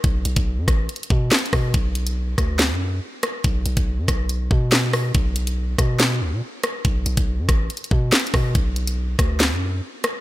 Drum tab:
HH |x-----x--x--------x-----x-x-x-------x-x-x-o-----|x-----x--x--------x-----x-----------------x-----|x-----x--x--------x-----x-----------x-----o-----|x-----x--x--------x-----x-----------------x-----|
CP |------------------------------------x-----------|------------------------x-----------------------|------------------------------------x-----------|------------------------x-----------------------|
SD |------------------r-----------------o-----r-----|------------------r-----o-----------------r-----|------------------r-----------------o-----r-----|------------------r-----o-----------------r-----|
BD |o--------o--------o-----------o-----------o-----|o-----------------o-----------------------------|o--------o--------o-----------o-----------------|o-----------------o-----------------------------|

HH |x-----x--x--------x-----x-x-x-------x-x-x-o-----|x-----x--x--------x-----x-----------------x-----|
CP |------------------------------------x-----------|------------------------x-----------------------|
SD |------------------r-----------------o-----r-----|------------------r-----o-----------------r-----|
BD |o--------o--------o-----------o-----------o-----|o-----------------o-----------------------------|